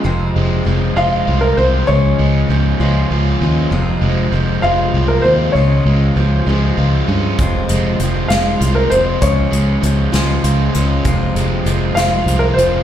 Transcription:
<<
  \new Staff \with { instrumentName = "Grand piano" } { \time 6/8 \key f \minor \tempo 4. = 65 r4. f''8. bes'16 c''8 | des''4. r4. | r4. f''8. bes'16 c''8 | des''4. r4. |
r4. f''8. bes'16 c''8 | des''4. r4. | r4. f''8. bes'16 c''8 | }
  \new Staff \with { instrumentName = "Overdriven electric guitar" } { \clef bass \time 6/8 \key f \minor f,8 aes8 f8 aes8 f'8 c'8 | des8 aes8 f8 aes8 f'8 des'8 | f,8 aes8 f8 aes8 f'8 c'8 | des8 aes8 f8 aes8 f'8 des'8 |
f,8 aes8 f8 aes8 f'8 c'8 | des8 aes8 f8 aes8 f'8 des'8 | f,8 aes8 f8 aes8 f'8 c'8 | }
  \new Staff \with { instrumentName = "Steel-string acoustic guitar" } { \clef bass \time 6/8 \key f \minor <f, c f aes c' f'>4 <f aes c' f'>8 <f, c f aes c' f'>4 <f aes c' f'>8 | <des f aes des' f'>4 <f aes des' f'>8 <des f aes des' f'>4 <aes des' f'>8 | <f, c f aes c' f'>4 <f aes c' f'>8 <f, c f aes c' f'>4 <f aes c' f'>8 | <des f aes des' f'>4 <f aes des' f'>8 <des f aes des' f'>4 <des' f'>8 |
<f, c f aes c' f'>4 <f aes c' f'>8 <f, c f aes c' f'>4 <f aes c' f'>8 | <des f aes des' f'>4 <f aes des' f'>8 <des f aes des' f'>4 <aes des' f'>8 | <f, c f aes c' f'>4 <f aes c' f'>8 <f, c f aes c' f'>4 <f aes c' f'>8 | }
  \new Staff \with { instrumentName = "Fingered electric bass" } { \clef bass \time 6/8 \key f \minor f,,8 f,,8 f,,8 f,,8 c,8 c,8 | des,8 des,8 des,8 des,8 des,8 ees,8 | f,,8 f,,8 f,,8 f,,8 c,8 ees,8 | des,8 des,8 des,8 des,8 des,8 g,8 |
f,,8 f,,8 f,,8 f,,8 c,8 f,,8 | des,8 des,8 des,8 des,8 des,8 des,8 | f,,8 f,,8 f,,8 f,,8 c,8 f,,8 | }
  \new DrumStaff \with { instrumentName = "Drums" } \drummode { \time 6/8 r4. r4. | r4. r4. | r4. r4. | r4. r4. |
<hh bd>8 hh8 hh8 <hh sn>8 hh8 hh8 | <hh bd>8 hh8 hh8 <hh sn>8 hh8 hh8 | <hh bd>8 hh8 hh8 <hh sn>8 hh8 hh8 | }
>>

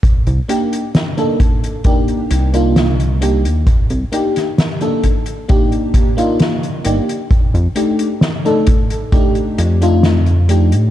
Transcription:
<<
  \new Staff \with { instrumentName = "FM electric piano" } { \time 4/4 \key c \dorian \tempo 4 = 66 r8 <bes d' ees' g'>16 r8 <bes d' ees' a'>16 r8 <bes d' ees' g'>8. <bes d' ees' f'>16 r8 <bes d' ees' g'>16 r16 | r8 <bes d' ees' g'>16 r8 <bes d' ees' a'>16 r8 <bes d' ees' g'>8. <bes d' ees' f'>16 r8 <bes d' ees' g'>16 r16 | r8 <a d' ees' g'>16 r8 <a d' ees' a'>16 r8 <a d' ees' g'>8. <a d' ees' f'>16 r8 <a d' ees' g'>16 r16 | }
  \new Staff \with { instrumentName = "Analog synth bass" } { \clef bass \time 4/4 \key c \dorian c,16 c,16 r2 c,4~ c,16 ees,16 | c,16 c,16 r2. g,,16 r16 | f,16 f,16 r2 f,4~ f,16 a,16 | }
  \new DrumStaff \with { instrumentName = "Drums" } \drummode { \time 4/4 <hh bd>16 hh16 hh16 hh16 <hh sn>16 hh16 <hh bd>16 hh16 <hh bd>16 hh16 hh16 hh16 <hh sn>16 hh16 hh16 hh16 | <hh bd>16 hh16 hh16 <hh sn>16 <hh sn>16 hh16 <hh bd>16 hh16 <hh bd>16 hh16 <hh bd>16 hh16 <hh sn>16 hh16 hh16 hh16 | <hh bd>16 hh16 hh16 hh16 <hh sn>16 hh16 <hh bd>16 hh16 <hh bd>16 hh16 hh16 hh16 <hh sn>16 hh16 hh16 hh16 | }
>>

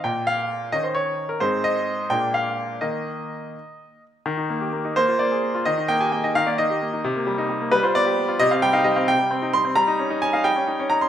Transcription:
\new Staff \with { instrumentName = "Grand piano" } { \time 6/8 \key ees \mixolydian \tempo 4. = 87 << { g''8 f''4 ees''16 c''16 des''8. bes'16 | \key ees \major c''8 ees''4 g''8 f''4 | ees''2~ ees''8 r8 | r4. c''8 d''4 |
ees''8 g''16 aes''16 g''16 ees''16 f''16 d''16 ees''4 | r4. b'16 c''16 d''4 | ees''16 f''16 g''16 f''16 ees''16 f''16 g''4 c'''8 | \key ees \mixolydian bes''4 aes''16 f''16 g''4 bes''16 c'''16 | } \\ { bes,4. <ees des' ees'>4. | <aes, aes c' ees'>4. <bes, aes bes d'>4. | <ees bes ees'>4. r4. | ees16 ees'16 bes16 g'16 bes16 ees'16 bes16 f'16 bes16 aes'16 bes16 f'16 |
ees16 ees'16 bes16 g'16 bes16 ees'16 ees16 bes16 ees'16 g'16 bes16 ees'16 | c16 bes16 g16 ees'16 g16 bes16 g16 f'16 b16 g'16 b16 f'16 | c16 c'16 g16 ees'16 g16 c'16 c16 g16 c'16 ees'16 g16 c'16 | g16 ees'16 des'16 ees'16 des'16 ees'16 g16 des'16 ees'16 des'16 ees'16 des'16 | } >> }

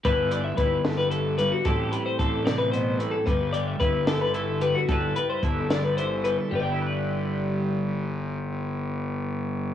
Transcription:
<<
  \new Staff \with { instrumentName = "Clean electric guitar" } { \time 6/8 \key g \major \tempo 4. = 74 b'8 d''16 e''16 b'8 a'16 b'16 a'8 b'16 fis'16 | a'8 b'16 c''16 a'8 d''16 b'16 c''8 b'16 a'16 | b'8 d''16 e''16 b'8 a'16 b'16 a'8 b'16 fis'16 | a'8 b'16 c''16 a'8 d''16 b'16 c''8 b'16 a'16 |
<g' b' d'' g''>2.~ | <g' b' d'' g''>2. | }
  \new Staff \with { instrumentName = "Clean electric guitar" } { \clef bass \time 6/8 \key g \major << { <g e' b'>4 e'2 | <g c' e' g'>4 c'2 | r4 e'4 e'4 | <g e' b'>4 e'4 e'4 |
<g e' b'>2.~ | <g e' b'>2. | } \\ { g,8 g2 g,8 | a,8 g4 c8 b,8 a,8 | g,8 g4 d4 g8 | g,8 g4 d4 g8 |
g,2.~ | g,2. | } >> }
  \new Staff \with { instrumentName = "Fingered electric bass" } { \clef bass \time 6/8 \key g \major g,,4 g,,2 | a,,8 r8 a,,2 | g,,4 g,,2 | g,,8 r8 g,,2 |
g,,2.~ | g,,2. | }
  \new DrumStaff \with { instrumentName = "Drums" } \drummode { \time 6/8 <hh bd>8 hh8 <hh bd>8 <hh sn>8 hh8 hh8 | <hh bd>8 hh8 <hh bd>8 <hh sn>8 hh8 hh8 | <hh bd>8 hh8 <hh bd>8 <hh sn>8 hh8 hh8 | <hh bd>8 hh8 <hh bd>8 <hh sn>8 hh8 hh8 |
r4. r4. | r4. r4. | }
>>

